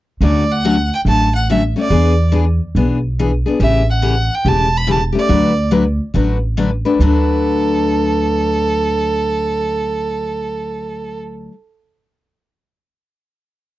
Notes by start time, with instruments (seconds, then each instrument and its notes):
0.21 upright bass D2, steel-string acoustic guitar D3 F#3 A3 C#4 F#4, violin D5
0.52 violin F#5
0.65 steel-string acoustic guitar D3 F#3 A3 C#4 F#4
0.95 violin G5
1.05 upright bass A1, steel-string acoustic guitar D3 F#3 A3 C#4 F#4, violin A5
1.35 violin F#5
1.50 steel-string acoustic guitar D3 F#3 A3 C#4 F#4, violin E5
1.76 steel-string acoustic guitar A3 C#4 F#4
1.80 violin D5
1.89 upright bass E2, steel-string acoustic guitar E3 B3 D4 G#4
2.32 steel-string acoustic guitar E3 B3 D4 G#4
2.75 upright bass B1, steel-string acoustic guitar E3 B3 D4 G#4
3.19 steel-string acoustic guitar E3 B3 D4 G#4
3.46 steel-string acoustic guitar B3 D4 G#4
3.60 upright bass A1, steel-string acoustic guitar C#3 E3 A3 C#4 G4, violin E5
3.91 violin F#5
4.02 steel-string acoustic guitar C#3 E3 A3 C#4 G4
4.35 violin G5
4.45 upright bass E1, steel-string acoustic guitar C#3 E3 A3 C#4 G4, violin A5
4.77 violin B5
4.87 steel-string acoustic guitar C#3 E3 A3 C#4 G4
4.92 violin A5
5.12 steel-string acoustic guitar A3 C#4 G4
5.19 violin D5
5.29 upright bass D2, steel-string acoustic guitar D3 F#3 A3 D4 F#4 B4
5.71 steel-string acoustic guitar D3 F#3 A3 D4 F#4 B4
6.14 upright bass A1, steel-string acoustic guitar D3 F#3 A3 D4 F#4 B4
6.57 steel-string acoustic guitar D3 F#3 A3 D4 F#4 B4
6.85 steel-string acoustic guitar A3 D4 F#4 B4
6.99 upright bass D2, steel-string acoustic guitar D3 F#3 A3 D4 F#4 B4, violin A4